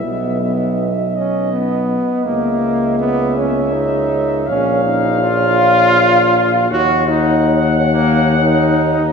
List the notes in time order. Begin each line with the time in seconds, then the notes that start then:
Already playing: E5
0.02 B1 B3 F#4 D#5
0.41 B3
1.15 C#4 D#5
1.52 B3
2.24 C#2 A#3 A#4 E5
2.99 B3
3.35 C#4 C#5
3.74 D#4
4.47 A#1 C#4 F5
4.84 D#4
5.22 F4
6.70 D#2 F#4 A#4 C#5 F#5
7.08 D#4
7.92 A#3
8.36 D#4